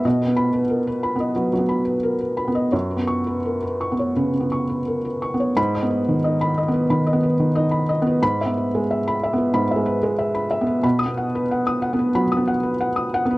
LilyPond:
<<
  \new Staff \with { instrumentName = "Felt piano" } { \time 4/4 \key gis \minor \tempo 4 = 91 << { r8 b''8 r2. | r8 cis'''8 r2. | b''8 r2. r8 | b''8 r2. r8 |
r16 dis'''8 r2. r16 | } \\ { dis''16 b'8 b'16 ais'16 b'16 b''16 dis''16 b'16 fis16 b''16 b'16 ais'16 b'16 b''16 dis''16 | cis''16 b'8 b'16 ais'16 b'16 cis'''16 cis''16 b'16 cis16 cis'''16 b'16 ais'16 b'16 cis'''16 cis''16 | r16 dis''16 b'16 dis16 dis''16 b''16 dis''16 b'16 b''16 dis''16 b'16 dis16 dis''16 b''16 dis''16 b'16 | r16 e''16 b'16 gis16 e''16 b''16 e''16 b'16 b''16 e''16 b'16 gis16 e''16 b''16 e''16 b'16 |
b''8 fis''16 b'16 fis''16 dis'''16 fis''16 b'16 b''16 dis'''16 fis''16 b'16 fis''16 dis'''16 fis''16 b'16 | } >> }
  \new Staff \with { instrumentName = "Felt piano" } { \time 4/4 \key gis \minor \tuplet 3/2 { b,8 b4 r4 b8 fis8 b4 r4 b8 } | \tuplet 3/2 { fis,8 b4 r4 b8 cis8 b4 r4 b8 } | \tuplet 3/2 { gis,8 b4 dis'4 b8 dis8 b4 dis'4 b8 } | \tuplet 3/2 { gis,8 b4 r4 b8 gis,8 gis4 r4 b8 } |
\tuplet 3/2 { b,8 b4 r4 b8 fis8 b4 r4 b8 } | }
>>